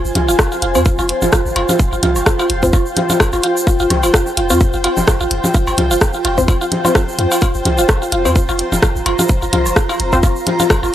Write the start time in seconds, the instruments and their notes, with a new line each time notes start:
Already playing: ambient pad F4 C5 G#5
0.05 sub bass F1, shaker
0.15 sub bass C2, synth arpeggio sound F4, closed hi-hat, low conga
0.28 sub bass F1, synth arpeggio sound F4, shaker
0.38 ambient pad G5, kick, cross-stick, low woodblock, shaker
0.52 synth arpeggio sound F4, shaker
0.62 sub bass F1, synth arpeggio sound F4, closed hi-hat
0.75 sub bass F2, synth stab C4 F4 C5, cowbell, shaker
0.85 synth arpeggio sound F4, kick, shaker
0.98 sub bass F1, synth arpeggio sound F4, low woodblock, shaker
1.09 closed hi-hat
1.22 sub bass D#1, synth arpeggio sound F4, low conga, shaker
1.32 synth arpeggio sound F4, kick, cross-stick, shaker
1.45 sub bass G1, shaker
1.56 sub bass F1, synth arpeggio sound F4, closed hi-hat, cowbell, low woodblock
1.69 synth arpeggio sound F4, low conga, shaker
1.79 kick, shaker
1.92 sub bass F1, synth arpeggio sound F4, shaker
2.03 sub bass C2, synth arpeggio sound F4, closed hi-hat, low conga
2.16 sub bass F1, low woodblock, shaker
2.26 synth arpeggio sound F4, kick, cross-stick, shaker
2.39 synth arpeggio sound F4, cowbell, shaker
2.50 sub bass F1, closed hi-hat
2.63 sub bass F2, synth stab C4 F4 C5, synth arpeggio sound F4, kick, shaker
2.73 synth arpeggio sound F4, kick, low woodblock, shaker
2.86 shaker
2.97 synth arpeggio sound F4, closed hi-hat, low conga
3.10 synth arpeggio sound F4, low conga, shaker
3.20 kick, cross-stick, cowbell, shaker
3.33 sub bass F1, synth arpeggio sound F4, low woodblock, shaker
3.43 synth arpeggio sound F4, closed hi-hat
3.57 shaker
3.67 synth arpeggio sound F4, kick, shaker
3.79 sub bass F1, synth arpeggio sound F4, shaker
3.90 sub bass C2, closed hi-hat, low conga, low woodblock
4.03 sub bass F1, synth arpeggio sound F4, cowbell, shaker
4.14 synth arpeggio sound F4, kick, cross-stick, shaker
4.27 shaker
4.37 sub bass F1, synth arpeggio sound F4, closed hi-hat
4.50 sub bass F2, synth stab C4 F4 C5, synth arpeggio sound F4, low woodblock, shaker
4.61 kick, shaker
4.73 sub bass F1, synth arpeggio sound F4, shaker
4.84 synth arpeggio sound F4, closed hi-hat, cowbell
4.97 sub bass D#1, low conga, shaker
5.08 synth arpeggio sound F4, kick, cross-stick, low woodblock, shaker
5.21 sub bass G1, synth arpeggio sound F4, shaker
5.31 sub bass F1, closed hi-hat
5.44 synth arpeggio sound F4, low conga, shaker
5.54 synth arpeggio sound F4, kick, shaker
5.67 sub bass F1, cowbell, low woodblock, shaker
5.78 sub bass C2, synth arpeggio sound F4, closed hi-hat, low conga
5.91 sub bass F1, synth arpeggio sound F4, shaker
6.01 kick, cross-stick, shaker
6.13 synth arpeggio sound F4, shaker
6.25 sub bass F1, synth arpeggio sound F4, closed hi-hat, low woodblock
6.38 sub bass F2, synth stab C4 F4 C5, kick, shaker
6.48 synth arpeggio sound F4, kick, cowbell, shaker
6.61 synth arpeggio sound F4, shaker
6.72 closed hi-hat, low conga
6.85 synth stab C4 F4 C5, synth arpeggio sound F4, low conga, low woodblock, shaker
6.95 synth arpeggio sound F4, kick, cross-stick, shaker
7.08 shaker
7.18 sub bass F2, synth arpeggio sound F4, closed hi-hat
7.32 synth arpeggio sound F4, cowbell, shaker
7.41 synth arpeggio sound F4, kick, cowbell, shaker
7.55 sub bass F1, shaker
7.65 sub bass C2, synth arpeggio sound F4, closed hi-hat, low conga
7.78 sub bass F1, synth arpeggio sound F4, shaker
7.88 ambient pad A#5, kick, cross-stick, low woodblock, shaker
8.02 synth arpeggio sound F4, shaker
8.12 sub bass F1, synth arpeggio sound F4, closed hi-hat
8.25 sub bass F2, synth stab C4 F4 C5, cowbell, shaker
8.36 synth arpeggio sound F4, kick, shaker
8.49 sub bass F1, synth arpeggio sound F4, low woodblock, shaker
8.59 closed hi-hat
8.72 sub bass D#1, synth arpeggio sound F4, low conga, shaker
8.83 synth arpeggio sound F4, kick, cross-stick, shaker
8.95 sub bass G1, shaker
9.06 sub bass F1, synth arpeggio sound F4, closed hi-hat, cowbell, low woodblock
9.19 synth arpeggio sound F4, low conga, shaker
9.28 kick, shaker
9.42 sub bass F1, synth arpeggio sound F4, shaker
9.53 sub bass C2, synth arpeggio sound F4, closed hi-hat, low conga
9.66 sub bass F1, low woodblock, shaker
9.76 synth arpeggio sound F4, kick, cross-stick, shaker
9.89 synth arpeggio sound F4, cowbell, shaker
10.00 sub bass F1, closed hi-hat
10.13 sub bass F2, synth stab C4 F4 C5, synth arpeggio sound F4, kick, shaker
10.23 synth arpeggio sound F4, kick, low woodblock, shaker
10.36 shaker
10.47 synth arpeggio sound F4, closed hi-hat, low conga
10.60 synth arpeggio sound F4, low conga, shaker
10.70 kick, cross-stick, cowbell, shaker
10.83 sub bass F1, synth arpeggio sound F4, low woodblock, shaker